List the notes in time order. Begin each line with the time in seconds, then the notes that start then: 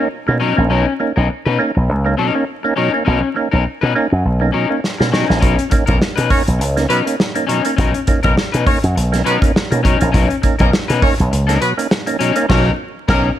0.27 B2 A#3 C#4 D#4, muted clean electric guitar stroke
0.40 B2 F#3 C#4 D#4 A#4
0.57 A#1 A#3 C#4 D#4, muted clean electric guitar stroke
0.70 B1 B2 F#3 C#4 D#4 A#4
0.87 muted clean electric guitar stroke
1.00 A#3 C#4 D#4, muted clean electric guitar stroke
1.16 B1 C#4 D#4 A#4
1.29 muted clean electric guitar stroke, muted slap bass stroke
1.46 B2 C#4 D#4 B4
1.59 A#3 C#4 D#4, muted clean electric guitar stroke
1.75 B1, muted clean electric guitar stroke
1.89 C#2
2.05 A#3 C#4 D#4, muted clean electric guitar stroke
2.17 B2 F#3 C#4 D#4 A#4
2.34 A#3 C#4 D#4, muted clean electric guitar stroke
2.63 A#3 C#4 D#4, muted clean electric guitar stroke
2.76 B2 F#3 C#4 D#4 A#4
2.93 A#3 C#4 D#4, muted clean electric guitar stroke
3.05 B1 B2 F#3 C#4 D#4 A#4
3.22 muted clean electric guitar stroke
3.34 A#3 C#4 D#4, muted clean electric guitar stroke
3.51 B1 C#4 D#4 A#4
3.64 muted clean electric guitar stroke
3.81 B2 C#4 D#4 B4
3.94 A#3 C#4 D#4, muted clean electric guitar stroke
4.10 F#2, muted clean electric guitar stroke
4.25 B1
4.40 A#3 C#4 D#4, muted clean electric guitar stroke
4.52 B2 F#3 C#4 D#4 A#4
4.69 A#3 C#4 D#4, muted clean electric guitar stroke
4.84 snare
4.98 B2 A#3 C#4 D#4, muted clean electric guitar stroke, snare
5.12 B2 F#3 C#4 D#4 A#4, snare
5.28 A#1 A#3 C#4 D#4, muted clean electric guitar stroke, snare
5.40 B1 B2 F#3 C#4 D#4 A#4, kick, closed hi-hat
5.57 muted clean electric guitar stroke, closed hi-hat
5.70 A#3 C#4 D#4, muted clean electric guitar stroke, kick, closed hi-hat
5.86 B1 A#3 C#4 D#4 A#4, kick, closed hi-hat
5.99 muted clean electric guitar stroke, snare
6.16 B2 C#4 D#4 B4, closed hi-hat
6.30 A#3 C#4 D#4 C#5, kick, open hi-hat
6.47 B1, muted clean electric guitar stroke, closed hi-hat
6.59 C#2, muted clean electric guitar stroke, closed hi-hat
6.76 A#3 C#4 D#4, snare, closed hi-hat
6.89 B2 F#3 B3 C#4 D#4 A#4 B4, closed hi-hat
7.05 A#3 C#4 D#4, muted clean electric guitar stroke, closed hi-hat
7.20 snare
7.35 A#3 C#4 D#4, muted clean electric guitar stroke, closed hi-hat
7.47 B2 F#3 C#4 D#4 A#4, closed hi-hat
7.63 A#3 C#4 D#4, muted clean electric guitar stroke, closed hi-hat
7.76 B1 B2 F#3 C#4 D#4 A#4, kick, closed hi-hat
7.94 muted clean electric guitar stroke, closed hi-hat
8.07 A#3 C#4 D#4, muted clean electric guitar stroke, kick, closed hi-hat
8.23 B1 A#3 C#4 D#4 A#4, kick, closed hi-hat
8.36 muted clean electric guitar stroke, muted slap bass stroke, snare
8.52 B2 C#4 D#4 B4, closed hi-hat
8.65 A#3 C#4 D#4 C#5, muted clean electric guitar stroke, kick, open hi-hat
8.82 F#2, muted clean electric guitar stroke, closed hi-hat
8.95 B1, muted clean electric guitar stroke, closed hi-hat
9.12 A#3 C#4 D#4, muted clean electric guitar stroke, snare, closed hi-hat
9.24 B2 F#3 B3 C#4 D#4 A#4 B4, closed hi-hat
9.41 A#3 C#4 D#4, muted clean electric guitar stroke, kick, closed hi-hat
9.56 snare
9.71 B2 A#3 C#4 D#4, muted clean electric guitar stroke, closed hi-hat
9.83 B2 F#3 C#4 D#4 A#4, kick, closed hi-hat
9.99 A#1 A#3 C#4 D#4, muted clean electric guitar stroke, closed hi-hat
10.12 B1 B2 F#3 C#4 D#4 A#4, kick, closed hi-hat
10.29 muted clean electric guitar stroke, closed hi-hat
10.42 A#3 C#4 D#4, muted clean electric guitar stroke, kick, closed hi-hat
10.59 B1 A#3 C#4 D#4 A#4, kick, closed hi-hat
10.71 muted clean electric guitar stroke, snare
10.88 B2 C#4 D#4 B4, closed hi-hat
11.02 A#3 C#4 D#4 C#5, muted clean electric guitar stroke, kick, open hi-hat
11.18 B1, muted clean electric guitar stroke, closed hi-hat
11.32 C#2, muted clean electric guitar stroke, closed hi-hat
11.47 A#3 C#4 D#4 A#4, snare, closed hi-hat
11.60 B2 F#3 B3 B4, muted clean electric guitar stroke, closed hi-hat
11.78 A#3 C#4 D#4, muted clean electric guitar stroke, closed hi-hat
11.91 snare
12.06 A#3 C#4 D#4, muted clean electric guitar stroke, closed hi-hat
12.19 B2 F#3 C#4 D#4 A#4, closed hi-hat
12.36 A#3 C#4 D#4, muted clean electric guitar stroke, closed hi-hat
12.49 B1 B2 F#3 A#3 C#4 D#4 A#4, kick, snare, crash
13.08 B1 A#3 C#4 D#4 A#4, kick, snare